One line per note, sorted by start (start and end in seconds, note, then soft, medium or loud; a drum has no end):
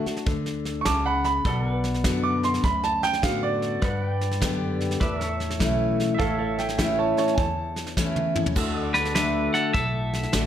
0.00 1.42 A4 medium
0.06 0.27 D4 soft
0.06 0.26 F#4 medium
0.06 muted upright bass stroke soft
0.06 snare soft
0.17 snare soft
0.26 0.84 D2 medium
0.26 0.84 D3 medium
0.26 kick loud
0.26 snare soft
0.46 snare soft
0.65 snare soft
0.81 1.04 A5 medium
0.81 0.86 C#6 medium
0.85 1.44 C#2 loud
0.85 1.43 C#3 medium
0.85 1.05 D6 loud
0.85 kick medium
0.85 snare loud
0.85 hi-hat pedal medium
1.06 1.24 F#5 medium
1.06 1.23 B5 medium
1.24 1.57 B5 loud
1.24 snare soft
1.45 2.03 B1 medium
1.45 2.60 B2 medium
1.45 1.71 A4 medium
1.45 3.81 D5 medium
1.45 3.81 F#5 medium
1.45 kick loud
1.45 snare soft
1.71 3.80 B4 medium
1.84 snare soft
1.94 snare soft
2.04 2.62 F#2 loud
2.04 2.62 D3 medium
2.04 2.62 B3 medium
2.04 2.62 D4 loud
2.04 2.63 F#4 loud
2.04 kick medium
2.04 snare loud
2.04 hi-hat pedal medium
2.23 2.43 D6 medium
2.43 2.63 C6 medium
2.43 snare soft
2.54 snare soft
2.64 3.21 D2 medium
2.64 3.78 F#2 medium
2.64 2.83 B5 medium
2.64 kick loud
2.64 snare soft
2.83 3.03 A5 loud
2.83 snare soft
3.03 3.22 G5 loud
3.03 snare soft
3.13 snare soft
3.22 3.81 A2 loud
3.22 3.80 D3 medium
3.22 3.80 B3 medium
3.22 3.80 D4 loud
3.22 3.81 F#4 loud
3.22 3.42 F5 medium
3.22 kick loud
3.22 snare loud
3.22 hi-hat pedal medium
3.43 5.17 D5 medium
3.62 snare soft
3.82 4.96 G2 medium
3.82 4.40 G2 medium
3.82 5.00 B4 medium
3.82 5.00 D5 medium
3.82 4.04 F#5 medium
3.82 kick loud
3.82 snare soft
4.04 5.01 G5 medium
4.21 snare soft
4.31 snare soft
4.41 4.99 F#2 loud
4.41 4.98 D3 medium
4.41 4.99 B3 loud
4.41 4.99 G4 loud
4.41 kick medium
4.41 snare loud
4.41 hi-hat pedal medium
4.80 snare soft
4.91 snare soft
5.00 5.58 E2 medium
5.00 6.15 A2 medium
5.00 5.25 B4 medium
5.00 5.21 D5 medium
5.00 6.19 E5 medium
5.00 kick loud
5.00 snare soft
5.21 6.18 C#5 medium
5.21 snare soft
5.25 6.17 A4 medium
5.40 snare soft
5.50 snare soft
5.59 6.18 B1 loud
5.59 6.17 E3 medium
5.59 6.17 A3 loud
5.59 6.18 C#4 medium
5.59 6.18 E4 loud
5.59 kick loud
5.59 snare loud
5.59 hi-hat pedal medium
6.00 snare soft
6.14 6.37 A4 medium
6.14 6.19 E5 medium
6.19 7.10 A1 medium
6.19 7.34 A2 medium
6.19 8.53 A4 medium
6.19 8.54 C#5 medium
6.19 8.54 E5 medium
6.19 6.37 F5 loud
6.19 kick loud
6.19 snare soft
6.38 6.57 A4 medium
6.38 6.58 F5 medium
6.58 6.76 E5 medium
6.58 6.77 G5 medium
6.58 snare soft
6.69 snare soft
6.78 7.35 E3 medium
6.78 7.36 A3 loud
6.78 7.36 C#4 loud
6.78 7.36 E4 medium
6.78 6.96 E5 medium
6.78 6.98 G5 medium
6.78 kick medium
6.78 snare loud
6.78 hi-hat pedal medium
6.99 7.17 C#5 medium
6.99 7.17 A5 medium
7.17 7.36 C#5 medium
7.17 7.37 A5 medium
7.17 snare soft
7.28 snare soft
7.34 8.28 E2 medium
7.34 8.52 E2 loud
7.34 7.38 G#5 medium
7.34 kick loud
7.34 snare soft
7.38 8.43 A5 loud
7.76 snare soft
7.87 snare soft
7.97 8.34 E3 medium
7.97 8.34 A3 medium
7.97 8.35 C#4 medium
7.97 8.34 E4 loud
7.97 kick medium
7.97 snare medium
7.97 hi-hat pedal loud
8.16 high tom medium
8.35 8.56 C#4 medium
8.35 8.55 E4 medium
8.35 mid tom medium
8.46 floor tom loud
8.56 9.47 D2 medium
8.56 9.14 D3 loud
8.56 10.46 F#4 medium
8.56 10.46 A4 medium
8.56 8.83 E5 medium
8.56 kick loud
8.56 snare soft
8.56 crash loud
8.83 10.46 D5 medium
8.94 9.14 D4 medium
8.94 9.14 B4 medium
8.94 snare soft
9.05 snare soft
9.15 9.72 D3 loud
9.15 9.72 A3 loud
9.15 9.51 D4 medium
9.15 9.73 D4 loud
9.15 9.73 F#4 loud
9.15 9.51 B4 medium
9.15 snare loud
9.15 hi-hat pedal medium
9.54 9.73 A4 medium
9.54 9.73 F#5 loud
9.54 snare soft
9.73 10.25 B1 medium
9.73 10.46 A2 medium
9.73 10.46 A4 medium
9.73 10.46 E5 loud
9.73 kick loud
9.73 snare soft
10.13 snare soft
10.23 snare soft
10.32 10.46 A1 medium
10.32 10.46 D3 medium
10.32 10.46 A3 medium
10.32 10.46 D4 medium
10.32 10.46 F#4 medium
10.32 snare loud
10.32 hi-hat pedal loud